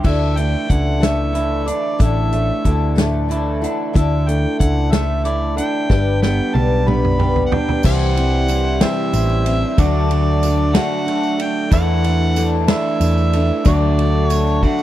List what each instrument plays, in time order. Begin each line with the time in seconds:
0.03 picked electric bass D2, twelve-string acoustic guitar D3 A3 D4 E4 A4, harmonium E3 A3 D4 A4, reed electric piano E4 A4 D5, harmonica E5, kick, crash
0.35 clean electric guitar A3, twelve-string acoustic guitar D4 E4 A4, harmonica G5, closed hi-hat
0.68 picked electric bass C#2, clean electric guitar D3, twelve-string acoustic guitar A3 D4 E4 A4, harmonica F#5, kick, closed hi-hat
1.00 twelve-string acoustic guitar A3 D4 E4 A4, snare, closed hi-hat
1.04 harmonica E5
1.33 twelve-string acoustic guitar A3 D4 E4 A4, closed hi-hat
1.66 twelve-string acoustic guitar D4 E4 A4, harmonica D5, closed hi-hat
1.99 picked electric bass A1, twelve-string acoustic guitar A2 D3 A3 D4 E4 A4, reed electric piano E4 A4 D5, harmonica E5, kick, closed hi-hat
2.32 twelve-string acoustic guitar A3 D4 E4 A4, closed hi-hat
2.64 picked electric bass D2, clean electric guitar D3, twelve-string acoustic guitar A3 D4 E4 A4, kick, closed hi-hat
2.95 twelve-string acoustic guitar A2 D3 A3 D4 E4 A4, snare, closed hi-hat
3.29 twelve-string acoustic guitar A3 D4 E4 A4, reed electric piano A5, closed hi-hat
3.62 twelve-string acoustic guitar A3 D4 E4 A4, reed electric piano F#5, closed hi-hat
3.93 picked electric bass D2, twelve-string acoustic guitar D3 A3 D4 E4 A4, harmonium A3, reed electric piano E4 A4 D5, harmonica E5, kick, closed hi-hat
4.27 clean electric guitar A3, twelve-string acoustic guitar D4 E4 A4, harmonica G5, closed hi-hat
4.59 picked electric bass C#2, clean electric guitar D3, twelve-string acoustic guitar A3 D4 E4 A4, harmonica F#5, kick, closed hi-hat
4.91 twelve-string acoustic guitar A3 D4 E4 A4, harmonica E5, snare, closed hi-hat
5.24 twelve-string acoustic guitar A3 D4 E4 A4, harmonica D5, closed hi-hat
5.56 twelve-string acoustic guitar D4 E4 A4, harmonica G5, closed hi-hat
5.89 picked electric bass G1, clean electric guitar G2, twelve-string acoustic guitar G3 D4 G4 B4, harmonium G3 B3 B4, reed electric piano G4 B4 D5, kick, snare
6.22 clean electric guitar B3, twelve-string acoustic guitar D4 G4 B4, harmonica G5, snare
6.54 picked electric bass B1, twelve-string acoustic guitar G3 D4 G4 B4, harmonica A5, high tom
6.87 twelve-string acoustic guitar G3 D4 G4 B4, clean electric guitar B3, harmonica B5, mid tom
7.04 mid tom
7.19 twelve-string acoustic guitar G3 D4 G4 B4, mid tom
7.36 floor tom
7.46 harmonica F#5
7.52 twelve-string acoustic guitar D4 G4 B4, harmonica G5, floor tom
7.69 floor tom
7.83 picked electric bass C2, twelve-string acoustic guitar C3 E3 G3 C4 E4 C5, harmonium G3 C4 E4 C5, reed electric piano G4 C5 E5, clean electric guitar G4, harmonica F#5, kick, crash, tambourine
8.17 twelve-string acoustic guitar G3 C4 E4 C5, ride
8.48 twelve-string acoustic guitar G3 C4 E4 C5, ride, tambourine
8.80 twelve-string acoustic guitar C3 E3 G3 C4 E4 C5, clean electric guitar G4, harmonica E5, snare, ride
9.13 picked electric bass A1, twelve-string acoustic guitar G3 C4 E4 C5, ride, tambourine
9.29 tambourine
9.46 twelve-string acoustic guitar G3 C4 E4 C5, ride, tambourine
9.78 picked electric bass D2, twelve-string acoustic guitar D3 A3 D4 F#4 A4, harmonium F#3 A3 D4 A4, reed electric piano F#3 A4 D5, harmonica D5, kick, ride, tambourine
10.09 twelve-string acoustic guitar D4 F#4 A4, ride, tambourine
10.43 twelve-string acoustic guitar A3 D4 F#4 A4, ride, tambourine
10.74 twelve-string acoustic guitar D3 A3 D4 F#4 A4, harmonica F#5, snare, ride
11.05 twelve-string acoustic guitar A3 D4 F#4 A4, ride
11.23 tambourine
11.38 twelve-string acoustic guitar D4 A4, harmonica G5, ride, tambourine
11.71 picked electric bass E2, twelve-string acoustic guitar E3 A3 D4 E4 A4, harmonium E3 A3 D4, reed electric piano E4 A4 D5, harmonica F#5, kick, ride, tambourine
12.04 twelve-string acoustic guitar D4 E4 A4, ride, tambourine
12.36 twelve-string acoustic guitar A3 D4 E4 A4, ride, tambourine
12.68 twelve-string acoustic guitar E3 A3 D4 E4 A4, harmonica E5, snare, ride
13.00 picked electric bass E2, twelve-string acoustic guitar A3 D4 E4, ride, tambourine
13.04 twelve-string acoustic guitar A4
13.17 tambourine
13.33 twelve-string acoustic guitar D4 E4 A4, ride, tambourine
13.64 picked electric bass D2, twelve-string acoustic guitar D3 A3 D4 F#4 A4, reed electric piano F#3 A4 D5, harmonium F#3, harmonica D5, kick, ride, tambourine
13.99 twelve-string acoustic guitar D4 F#4 A4, ride
14.29 twelve-string acoustic guitar A3 D4 F#4 A4, harmonica C#5, ride, tambourine
14.47 tambourine
14.63 twelve-string acoustic guitar D3 A3 D4 F#4 A4, harmonica F#5, kick, tambourine
14.79 tambourine